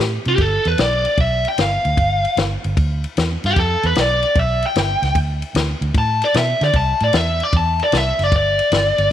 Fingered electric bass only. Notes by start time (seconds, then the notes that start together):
0.00 A2
0.26 C3
0.38 G1
0.66 E2
0.78 B1
1.18 B1
1.58 G1
1.85 D2
1.98 G1
2.37 G1
2.65 G1
2.77 D2
3.17 E2
3.44 G2
3.56 F2
3.84 E2
3.96 B1
4.36 B1
4.76 G1
5.02 C#2
5.15 D2
5.55 D2
5.81 D2
5.95 A2
6.35 B2
6.61 D3
6.74 C2
7.01 A2
7.13 E2
7.53 E2
7.93 C2
8.19 F#1
8.32 G1
8.72 G1
8.98 G1